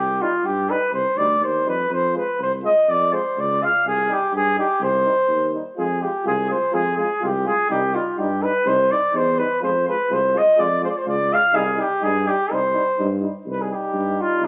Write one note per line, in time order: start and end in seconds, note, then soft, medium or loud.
0.00 0.21 C2 medium
0.00 0.22 G4 medium
0.21 0.30 G3 medium
0.21 0.31 D#4 medium
0.21 0.47 F4 medium
0.44 0.71 G2 medium
0.44 0.71 G4 medium
0.68 0.78 G3 medium
0.68 0.80 D#4 medium
0.68 0.93 B4 loud
0.92 1.06 C2 medium
0.92 1.19 C5 medium
1.16 1.38 D2 medium
1.16 1.27 G3 medium
1.16 1.27 D#4 soft
1.16 1.45 D5 medium
1.40 1.63 D#2 medium
1.40 1.70 C5 medium
1.65 1.88 F2 medium
1.65 1.75 G3 medium
1.65 1.75 D#4 soft
1.65 1.92 B4 medium
1.90 2.17 F2 medium
1.90 2.14 C5 medium
2.13 2.24 G#3 medium
2.13 2.23 F4 medium
2.13 2.39 B4 medium
2.39 2.65 C2 medium
2.39 2.52 C5 medium
2.62 2.72 G#3 medium
2.62 2.72 F4 medium
2.62 2.91 D#5 loud
2.88 3.15 F2 medium
2.88 3.14 D5 loud
3.10 3.21 G#3 medium
3.10 3.20 F4 medium
3.10 3.41 C5 medium
3.37 3.63 C#2 medium
3.37 3.64 D5 medium
3.60 3.70 G#3 medium
3.60 3.71 F4 medium
3.60 3.86 F5 loud
3.84 4.11 C2 medium
3.84 4.13 G#4 medium
4.08 4.18 G3 medium
4.08 4.18 D#4 medium
4.08 4.35 G4 medium
4.32 4.59 G2 medium
4.32 4.57 G#4 loud
4.56 4.66 G3 medium
4.56 4.67 D#4 medium
4.56 4.84 G4 medium
4.80 5.07 C2 loud
4.80 5.55 C5 medium
5.05 5.15 G3 medium
5.05 5.14 D#4 medium
5.28 5.55 D#2 medium
5.53 5.63 G3 soft
5.53 5.63 D#4 medium
5.77 6.04 F2 medium
5.77 5.87 G#3 medium
5.77 5.87 F4 medium
5.77 6.02 G#4 medium
6.01 6.10 G#3 medium
6.01 6.11 F4 medium
6.01 6.26 G4 medium
6.24 6.52 C2 loud
6.24 6.35 G#3 soft
6.24 6.34 F4 medium
6.24 6.49 G#4 medium
6.48 6.58 G#3 medium
6.48 6.59 F4 medium
6.48 6.75 C5 medium
6.72 7.00 F2 medium
6.72 6.82 G#3 medium
6.72 6.82 F4 medium
6.72 6.97 G#4 loud
6.96 7.06 G#3 medium
6.96 7.08 F4 medium
6.96 7.20 G#4 medium
7.21 7.49 C2 medium
7.21 7.31 G#3 medium
7.21 7.31 F4 medium
7.21 7.48 G4 medium
7.44 7.54 G#3 medium
7.44 7.55 F4 medium
7.44 7.70 G#4 medium
7.70 7.96 C2 loud
7.70 7.80 G3 medium
7.70 7.80 D#4 medium
7.70 7.96 G4 medium
7.94 8.04 G3 medium
7.94 8.04 D#4 medium
7.94 8.20 F4 medium
8.17 8.45 G2 medium
8.17 8.27 G3 medium
8.17 8.28 D#4 medium
8.17 8.44 G4 medium
8.42 8.51 G3 medium
8.42 8.52 D#4 medium
8.42 8.68 B4 medium
8.65 8.92 C2 loud
8.65 8.75 G3 medium
8.65 8.76 D#4 medium
8.65 8.93 C5 medium
8.89 8.99 G3 soft
8.89 9.00 D#4 medium
8.89 9.17 D5 medium
9.12 9.40 E2 loud
9.12 9.22 G3 soft
9.12 9.23 D#4 medium
9.16 9.39 C5 medium
9.37 9.47 G3 medium
9.37 9.48 D#4 medium
9.37 9.62 B4 medium
9.61 9.89 F2 medium
9.61 9.72 G#3 medium
9.61 9.71 F4 medium
9.61 9.85 C5 medium
9.86 9.96 G#3 medium
9.86 9.96 F4 medium
9.86 10.14 B4 medium
10.09 10.37 C2 medium
10.09 10.19 G#3 medium
10.09 10.20 F4 medium
10.09 10.39 C5 medium
10.33 10.43 G#3 medium
10.33 10.43 F4 medium
10.37 10.61 D#5 loud
10.57 10.85 F2 loud
10.57 10.67 G#3 medium
10.57 10.67 F4 medium
10.57 10.83 D5 loud
10.82 10.92 G#3 medium
10.82 10.92 F4 medium
10.82 10.91 C5 medium
10.89 10.99 D5 medium
10.97 11.08 C5 medium
11.05 11.33 C#2 medium
11.05 11.16 G#3 medium
11.05 11.15 F4 medium
11.05 11.34 D5 medium
11.30 11.41 G#3 medium
11.30 11.40 F4 medium
11.30 11.56 F5 loud
11.53 11.80 C2 medium
11.53 11.63 G3 medium
11.53 11.63 D#4 medium
11.53 11.82 G#4 medium
11.76 11.87 G3 medium
11.76 11.86 D#4 medium
11.76 12.05 G4 medium
12.00 12.28 G2 loud
12.00 12.12 G3 medium
12.00 12.10 D#4 medium
12.00 12.29 G#4 loud
12.25 12.35 G3 medium
12.25 12.35 D#4 medium
12.25 12.54 G4 loud
12.50 12.77 C2 medium
12.50 12.60 G3 medium
12.50 12.60 D#4 medium
12.50 13.23 C5 medium
12.74 12.84 G3 medium
12.74 12.83 D#4 medium
12.97 13.25 G2 loud
12.97 13.08 G3 soft
12.97 13.07 D#4 medium
13.20 13.31 G3 soft
13.20 13.30 D#4 medium
13.45 13.72 C2 medium
13.45 14.47 G3 medium
13.45 14.47 D#4 medium
13.50 13.63 B4 medium
13.61 13.74 G#4 medium
13.72 14.22 G4 medium
13.93 14.20 G2 medium
14.21 14.46 F4 medium
14.40 14.47 C2 medium
14.44 14.47 D4 medium